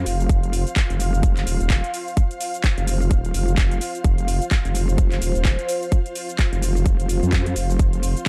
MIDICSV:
0, 0, Header, 1, 5, 480
1, 0, Start_track
1, 0, Tempo, 468750
1, 302, Time_signature, 4, 2, 24, 8
1, 8483, End_track
2, 0, Start_track
2, 0, Title_t, "Ambient pad"
2, 0, Program_c, 0, 92
2, 0, Note_on_c, 0, 65, 90
2, 0, Note_on_c, 0, 72, 73
2, 0, Note_on_c, 0, 77, 92
2, 8483, Note_off_c, 0, 65, 0
2, 8483, Note_off_c, 0, 72, 0
2, 8483, Note_off_c, 0, 77, 0
2, 8483, End_track
3, 0, Start_track
3, 0, Title_t, "Analog synth pad"
3, 0, Program_c, 1, 89
3, 0, Note_on_c, 1, 53, 79
3, 0, Note_on_c, 1, 60, 75
3, 301, Note_on_c, 1, 77, 84
3, 4131, Note_off_c, 1, 77, 0
3, 4143, Note_on_c, 1, 72, 91
3, 7972, Note_off_c, 1, 72, 0
3, 7984, Note_on_c, 1, 70, 86
3, 8483, Note_off_c, 1, 53, 0
3, 8483, Note_off_c, 1, 60, 0
3, 8483, Note_off_c, 1, 70, 0
3, 8483, End_track
4, 0, Start_track
4, 0, Title_t, "Wobble bass"
4, 0, Program_c, 2, 39
4, 62, Note_on_c, 2, 29, 91
4, 286, Note_off_c, 2, 29, 0
4, 301, Note_on_c, 2, 29, 95
4, 660, Note_off_c, 2, 29, 0
4, 923, Note_on_c, 2, 29, 101
4, 1247, Note_off_c, 2, 29, 0
4, 1261, Note_on_c, 2, 29, 97
4, 1486, Note_off_c, 2, 29, 0
4, 1503, Note_on_c, 2, 27, 93
4, 1621, Note_off_c, 2, 27, 0
4, 1643, Note_on_c, 2, 27, 100
4, 1861, Note_off_c, 2, 27, 0
4, 2843, Note_on_c, 2, 29, 96
4, 3167, Note_off_c, 2, 29, 0
4, 3182, Note_on_c, 2, 27, 98
4, 3406, Note_off_c, 2, 27, 0
4, 3423, Note_on_c, 2, 29, 99
4, 3647, Note_off_c, 2, 29, 0
4, 3662, Note_on_c, 2, 29, 98
4, 3886, Note_off_c, 2, 29, 0
4, 4141, Note_on_c, 2, 29, 99
4, 4500, Note_off_c, 2, 29, 0
4, 4764, Note_on_c, 2, 29, 104
4, 5087, Note_off_c, 2, 29, 0
4, 5101, Note_on_c, 2, 29, 98
4, 5326, Note_off_c, 2, 29, 0
4, 5343, Note_on_c, 2, 27, 94
4, 5461, Note_off_c, 2, 27, 0
4, 5483, Note_on_c, 2, 27, 92
4, 5701, Note_off_c, 2, 27, 0
4, 6682, Note_on_c, 2, 29, 97
4, 7006, Note_off_c, 2, 29, 0
4, 7021, Note_on_c, 2, 29, 94
4, 7380, Note_off_c, 2, 29, 0
4, 7402, Note_on_c, 2, 41, 94
4, 7726, Note_off_c, 2, 41, 0
4, 7742, Note_on_c, 2, 29, 95
4, 7966, Note_off_c, 2, 29, 0
4, 7981, Note_on_c, 2, 29, 95
4, 8340, Note_off_c, 2, 29, 0
4, 8483, End_track
5, 0, Start_track
5, 0, Title_t, "Drums"
5, 63, Note_on_c, 9, 46, 107
5, 66, Note_on_c, 9, 82, 72
5, 165, Note_off_c, 9, 46, 0
5, 168, Note_off_c, 9, 82, 0
5, 206, Note_on_c, 9, 82, 34
5, 301, Note_on_c, 9, 36, 121
5, 304, Note_on_c, 9, 42, 76
5, 307, Note_off_c, 9, 82, 0
5, 307, Note_on_c, 9, 82, 45
5, 404, Note_off_c, 9, 36, 0
5, 406, Note_off_c, 9, 42, 0
5, 409, Note_off_c, 9, 82, 0
5, 445, Note_on_c, 9, 42, 50
5, 447, Note_on_c, 9, 82, 20
5, 543, Note_on_c, 9, 46, 110
5, 546, Note_off_c, 9, 82, 0
5, 546, Note_on_c, 9, 82, 72
5, 547, Note_off_c, 9, 42, 0
5, 645, Note_off_c, 9, 46, 0
5, 648, Note_off_c, 9, 82, 0
5, 684, Note_on_c, 9, 42, 37
5, 687, Note_on_c, 9, 82, 34
5, 781, Note_on_c, 9, 36, 110
5, 783, Note_off_c, 9, 42, 0
5, 783, Note_on_c, 9, 39, 124
5, 783, Note_on_c, 9, 42, 79
5, 786, Note_off_c, 9, 82, 0
5, 786, Note_on_c, 9, 82, 45
5, 884, Note_off_c, 9, 36, 0
5, 885, Note_off_c, 9, 42, 0
5, 886, Note_off_c, 9, 39, 0
5, 888, Note_off_c, 9, 82, 0
5, 924, Note_on_c, 9, 42, 50
5, 927, Note_on_c, 9, 82, 21
5, 1023, Note_on_c, 9, 46, 114
5, 1025, Note_off_c, 9, 82, 0
5, 1025, Note_on_c, 9, 82, 75
5, 1026, Note_off_c, 9, 42, 0
5, 1125, Note_off_c, 9, 46, 0
5, 1128, Note_off_c, 9, 82, 0
5, 1168, Note_on_c, 9, 82, 32
5, 1261, Note_on_c, 9, 36, 127
5, 1263, Note_on_c, 9, 42, 82
5, 1266, Note_off_c, 9, 82, 0
5, 1266, Note_on_c, 9, 82, 44
5, 1363, Note_off_c, 9, 36, 0
5, 1366, Note_off_c, 9, 42, 0
5, 1369, Note_off_c, 9, 82, 0
5, 1404, Note_on_c, 9, 39, 36
5, 1404, Note_on_c, 9, 42, 51
5, 1407, Note_on_c, 9, 82, 21
5, 1503, Note_on_c, 9, 46, 119
5, 1506, Note_off_c, 9, 42, 0
5, 1506, Note_off_c, 9, 82, 0
5, 1506, Note_on_c, 9, 82, 77
5, 1507, Note_off_c, 9, 39, 0
5, 1605, Note_off_c, 9, 46, 0
5, 1608, Note_off_c, 9, 82, 0
5, 1643, Note_on_c, 9, 42, 34
5, 1646, Note_on_c, 9, 82, 30
5, 1741, Note_on_c, 9, 36, 113
5, 1743, Note_off_c, 9, 42, 0
5, 1743, Note_on_c, 9, 39, 123
5, 1743, Note_on_c, 9, 42, 74
5, 1746, Note_off_c, 9, 82, 0
5, 1746, Note_on_c, 9, 82, 43
5, 1844, Note_off_c, 9, 36, 0
5, 1846, Note_off_c, 9, 39, 0
5, 1846, Note_off_c, 9, 42, 0
5, 1848, Note_off_c, 9, 82, 0
5, 1885, Note_on_c, 9, 42, 52
5, 1888, Note_on_c, 9, 82, 22
5, 1984, Note_on_c, 9, 46, 104
5, 1986, Note_off_c, 9, 82, 0
5, 1986, Note_on_c, 9, 82, 74
5, 1987, Note_off_c, 9, 42, 0
5, 2086, Note_off_c, 9, 46, 0
5, 2089, Note_off_c, 9, 82, 0
5, 2127, Note_on_c, 9, 82, 33
5, 2222, Note_on_c, 9, 36, 126
5, 2223, Note_on_c, 9, 42, 78
5, 2226, Note_off_c, 9, 82, 0
5, 2226, Note_on_c, 9, 82, 44
5, 2324, Note_off_c, 9, 36, 0
5, 2326, Note_off_c, 9, 42, 0
5, 2328, Note_off_c, 9, 82, 0
5, 2364, Note_on_c, 9, 42, 47
5, 2366, Note_on_c, 9, 82, 21
5, 2463, Note_on_c, 9, 46, 112
5, 2466, Note_off_c, 9, 42, 0
5, 2466, Note_off_c, 9, 82, 0
5, 2466, Note_on_c, 9, 82, 78
5, 2565, Note_off_c, 9, 46, 0
5, 2568, Note_off_c, 9, 82, 0
5, 2603, Note_on_c, 9, 42, 38
5, 2605, Note_on_c, 9, 82, 36
5, 2701, Note_on_c, 9, 36, 107
5, 2703, Note_off_c, 9, 42, 0
5, 2703, Note_on_c, 9, 39, 123
5, 2703, Note_on_c, 9, 42, 81
5, 2706, Note_off_c, 9, 82, 0
5, 2706, Note_on_c, 9, 82, 45
5, 2804, Note_off_c, 9, 36, 0
5, 2805, Note_off_c, 9, 39, 0
5, 2805, Note_off_c, 9, 42, 0
5, 2808, Note_off_c, 9, 82, 0
5, 2843, Note_on_c, 9, 42, 49
5, 2846, Note_on_c, 9, 82, 21
5, 2943, Note_on_c, 9, 46, 107
5, 2945, Note_off_c, 9, 42, 0
5, 2946, Note_off_c, 9, 82, 0
5, 2946, Note_on_c, 9, 82, 75
5, 3045, Note_off_c, 9, 46, 0
5, 3048, Note_off_c, 9, 82, 0
5, 3086, Note_on_c, 9, 82, 31
5, 3182, Note_on_c, 9, 36, 125
5, 3183, Note_on_c, 9, 42, 75
5, 3186, Note_off_c, 9, 82, 0
5, 3186, Note_on_c, 9, 82, 43
5, 3284, Note_off_c, 9, 36, 0
5, 3285, Note_off_c, 9, 42, 0
5, 3288, Note_off_c, 9, 82, 0
5, 3324, Note_on_c, 9, 42, 48
5, 3327, Note_on_c, 9, 82, 21
5, 3423, Note_on_c, 9, 46, 113
5, 3426, Note_off_c, 9, 82, 0
5, 3426, Note_on_c, 9, 82, 76
5, 3427, Note_off_c, 9, 42, 0
5, 3526, Note_off_c, 9, 46, 0
5, 3528, Note_off_c, 9, 82, 0
5, 3564, Note_on_c, 9, 42, 33
5, 3567, Note_on_c, 9, 82, 30
5, 3662, Note_on_c, 9, 36, 116
5, 3663, Note_off_c, 9, 42, 0
5, 3663, Note_on_c, 9, 42, 77
5, 3664, Note_on_c, 9, 39, 115
5, 3666, Note_off_c, 9, 82, 0
5, 3666, Note_on_c, 9, 82, 44
5, 3764, Note_off_c, 9, 36, 0
5, 3766, Note_off_c, 9, 39, 0
5, 3766, Note_off_c, 9, 42, 0
5, 3769, Note_off_c, 9, 82, 0
5, 3804, Note_on_c, 9, 42, 51
5, 3807, Note_on_c, 9, 82, 22
5, 3903, Note_on_c, 9, 46, 108
5, 3906, Note_off_c, 9, 42, 0
5, 3906, Note_off_c, 9, 82, 0
5, 3906, Note_on_c, 9, 82, 74
5, 4005, Note_off_c, 9, 46, 0
5, 4008, Note_off_c, 9, 82, 0
5, 4044, Note_on_c, 9, 42, 35
5, 4047, Note_on_c, 9, 82, 35
5, 4142, Note_on_c, 9, 36, 124
5, 4143, Note_off_c, 9, 42, 0
5, 4143, Note_on_c, 9, 42, 77
5, 4146, Note_off_c, 9, 82, 0
5, 4146, Note_on_c, 9, 82, 44
5, 4244, Note_off_c, 9, 36, 0
5, 4245, Note_off_c, 9, 42, 0
5, 4248, Note_off_c, 9, 82, 0
5, 4283, Note_on_c, 9, 42, 51
5, 4286, Note_on_c, 9, 82, 22
5, 4383, Note_on_c, 9, 46, 104
5, 4385, Note_off_c, 9, 82, 0
5, 4385, Note_on_c, 9, 82, 79
5, 4386, Note_off_c, 9, 42, 0
5, 4485, Note_off_c, 9, 46, 0
5, 4488, Note_off_c, 9, 82, 0
5, 4523, Note_on_c, 9, 42, 38
5, 4525, Note_on_c, 9, 82, 36
5, 4622, Note_off_c, 9, 42, 0
5, 4622, Note_on_c, 9, 36, 105
5, 4622, Note_on_c, 9, 42, 75
5, 4623, Note_on_c, 9, 39, 120
5, 4625, Note_off_c, 9, 82, 0
5, 4625, Note_on_c, 9, 82, 46
5, 4724, Note_off_c, 9, 36, 0
5, 4725, Note_off_c, 9, 39, 0
5, 4725, Note_off_c, 9, 42, 0
5, 4728, Note_off_c, 9, 82, 0
5, 4763, Note_on_c, 9, 42, 50
5, 4766, Note_on_c, 9, 82, 22
5, 4862, Note_on_c, 9, 46, 111
5, 4865, Note_off_c, 9, 42, 0
5, 4865, Note_off_c, 9, 82, 0
5, 4865, Note_on_c, 9, 82, 78
5, 4964, Note_off_c, 9, 46, 0
5, 4967, Note_off_c, 9, 82, 0
5, 5006, Note_on_c, 9, 82, 35
5, 5101, Note_on_c, 9, 36, 121
5, 5102, Note_on_c, 9, 42, 77
5, 5105, Note_off_c, 9, 82, 0
5, 5105, Note_on_c, 9, 82, 46
5, 5204, Note_off_c, 9, 36, 0
5, 5204, Note_off_c, 9, 42, 0
5, 5207, Note_off_c, 9, 82, 0
5, 5242, Note_on_c, 9, 39, 35
5, 5242, Note_on_c, 9, 42, 48
5, 5245, Note_on_c, 9, 82, 23
5, 5342, Note_on_c, 9, 46, 113
5, 5344, Note_off_c, 9, 42, 0
5, 5345, Note_off_c, 9, 39, 0
5, 5345, Note_off_c, 9, 82, 0
5, 5345, Note_on_c, 9, 82, 82
5, 5445, Note_off_c, 9, 46, 0
5, 5448, Note_off_c, 9, 82, 0
5, 5482, Note_on_c, 9, 42, 34
5, 5485, Note_on_c, 9, 82, 34
5, 5581, Note_on_c, 9, 36, 111
5, 5582, Note_off_c, 9, 42, 0
5, 5582, Note_on_c, 9, 39, 115
5, 5582, Note_on_c, 9, 42, 79
5, 5584, Note_off_c, 9, 82, 0
5, 5584, Note_on_c, 9, 82, 46
5, 5684, Note_off_c, 9, 36, 0
5, 5684, Note_off_c, 9, 39, 0
5, 5684, Note_off_c, 9, 42, 0
5, 5687, Note_off_c, 9, 82, 0
5, 5722, Note_on_c, 9, 42, 50
5, 5725, Note_on_c, 9, 82, 23
5, 5822, Note_on_c, 9, 46, 100
5, 5824, Note_off_c, 9, 42, 0
5, 5825, Note_off_c, 9, 82, 0
5, 5825, Note_on_c, 9, 82, 77
5, 5925, Note_off_c, 9, 46, 0
5, 5928, Note_off_c, 9, 82, 0
5, 5965, Note_on_c, 9, 82, 35
5, 6061, Note_on_c, 9, 36, 116
5, 6063, Note_on_c, 9, 42, 81
5, 6065, Note_off_c, 9, 82, 0
5, 6065, Note_on_c, 9, 82, 48
5, 6164, Note_off_c, 9, 36, 0
5, 6165, Note_off_c, 9, 42, 0
5, 6168, Note_off_c, 9, 82, 0
5, 6204, Note_on_c, 9, 42, 53
5, 6206, Note_on_c, 9, 82, 23
5, 6302, Note_on_c, 9, 46, 101
5, 6305, Note_off_c, 9, 82, 0
5, 6305, Note_on_c, 9, 82, 81
5, 6306, Note_off_c, 9, 42, 0
5, 6405, Note_off_c, 9, 46, 0
5, 6407, Note_off_c, 9, 82, 0
5, 6442, Note_on_c, 9, 42, 38
5, 6445, Note_on_c, 9, 82, 38
5, 6541, Note_on_c, 9, 36, 100
5, 6542, Note_off_c, 9, 42, 0
5, 6542, Note_on_c, 9, 39, 114
5, 6542, Note_on_c, 9, 42, 79
5, 6544, Note_off_c, 9, 82, 0
5, 6544, Note_on_c, 9, 82, 46
5, 6644, Note_off_c, 9, 36, 0
5, 6644, Note_off_c, 9, 39, 0
5, 6644, Note_off_c, 9, 42, 0
5, 6647, Note_off_c, 9, 82, 0
5, 6684, Note_on_c, 9, 42, 51
5, 6687, Note_on_c, 9, 82, 23
5, 6783, Note_on_c, 9, 46, 104
5, 6786, Note_off_c, 9, 42, 0
5, 6786, Note_off_c, 9, 82, 0
5, 6786, Note_on_c, 9, 82, 80
5, 6886, Note_off_c, 9, 46, 0
5, 6888, Note_off_c, 9, 82, 0
5, 6926, Note_on_c, 9, 82, 35
5, 7021, Note_on_c, 9, 36, 118
5, 7023, Note_on_c, 9, 42, 78
5, 7026, Note_off_c, 9, 82, 0
5, 7026, Note_on_c, 9, 82, 48
5, 7124, Note_off_c, 9, 36, 0
5, 7126, Note_off_c, 9, 42, 0
5, 7128, Note_off_c, 9, 82, 0
5, 7164, Note_on_c, 9, 42, 53
5, 7167, Note_on_c, 9, 82, 23
5, 7263, Note_on_c, 9, 46, 104
5, 7266, Note_off_c, 9, 82, 0
5, 7266, Note_on_c, 9, 82, 86
5, 7267, Note_off_c, 9, 42, 0
5, 7365, Note_off_c, 9, 46, 0
5, 7368, Note_off_c, 9, 82, 0
5, 7402, Note_on_c, 9, 42, 35
5, 7405, Note_on_c, 9, 82, 33
5, 7501, Note_off_c, 9, 42, 0
5, 7501, Note_on_c, 9, 36, 104
5, 7501, Note_on_c, 9, 42, 78
5, 7502, Note_on_c, 9, 39, 116
5, 7504, Note_off_c, 9, 82, 0
5, 7504, Note_on_c, 9, 82, 45
5, 7603, Note_off_c, 9, 36, 0
5, 7604, Note_off_c, 9, 39, 0
5, 7604, Note_off_c, 9, 42, 0
5, 7606, Note_off_c, 9, 82, 0
5, 7642, Note_on_c, 9, 42, 52
5, 7645, Note_on_c, 9, 82, 23
5, 7741, Note_on_c, 9, 46, 97
5, 7743, Note_off_c, 9, 82, 0
5, 7743, Note_on_c, 9, 82, 80
5, 7744, Note_off_c, 9, 42, 0
5, 7843, Note_off_c, 9, 46, 0
5, 7846, Note_off_c, 9, 82, 0
5, 7885, Note_on_c, 9, 82, 38
5, 7981, Note_on_c, 9, 36, 121
5, 7981, Note_on_c, 9, 42, 83
5, 7984, Note_off_c, 9, 82, 0
5, 7984, Note_on_c, 9, 82, 48
5, 8083, Note_off_c, 9, 36, 0
5, 8084, Note_off_c, 9, 42, 0
5, 8087, Note_off_c, 9, 82, 0
5, 8122, Note_on_c, 9, 42, 55
5, 8125, Note_on_c, 9, 82, 24
5, 8221, Note_on_c, 9, 46, 101
5, 8224, Note_off_c, 9, 82, 0
5, 8224, Note_on_c, 9, 82, 82
5, 8225, Note_off_c, 9, 42, 0
5, 8324, Note_off_c, 9, 46, 0
5, 8326, Note_off_c, 9, 82, 0
5, 8362, Note_on_c, 9, 42, 38
5, 8365, Note_on_c, 9, 82, 38
5, 8465, Note_off_c, 9, 42, 0
5, 8468, Note_off_c, 9, 82, 0
5, 8483, End_track
0, 0, End_of_file